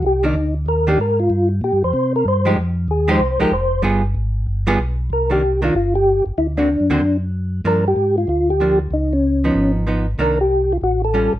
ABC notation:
X:1
M:4/4
L:1/8
Q:"Swing" 1/4=189
K:Cm
V:1 name="Tonewheel organ"
G E2 z B G B F- | F z G c2 B c2 | z2 A c2 B c2 | z8 |
B G2 F F G2 z | =E D4 z3 | B G2 F F G2 z | E _D4 z3 |
B G2 F ^F =A2 z |]
V:2 name="Hollow-body jazz guitar"
z [E,B,D] z3 [E,B,D] z2 | z6 z [F,A,EG] | z3 [F,A,EG] z [F,A,EG] z2 | [G,=B,FA] z4 [G,B,FA] z2 |
z [E,B,D] z [E,B,D] z4 | z [D,B,C^F] z [D,B,CF] z4 | [F,B,D] z4 z [F,B,D] z | z3 [F,_CE]3 [F,CE] z |
[E,B,D] z4 z [G,^CF] z |]
V:3 name="Tonewheel organ" clef=bass
C,,2 D,,2 E,,2 A,,2 | G,,2 (3B,, G,, F,, C,2 G,,2 | F,,2 E,,2 C,, C,, F,,,2 | G,,,2 A,,,2 G,,,2 =B,,,2 |
C,,4 G,,,3 G,,, | D,,2- (3D,, ^F,, E,, F,,4 | G,,2 A,,2 D,,4 | _D,,4 A,,,4 |
C,,4 =A,,,3 A,,, |]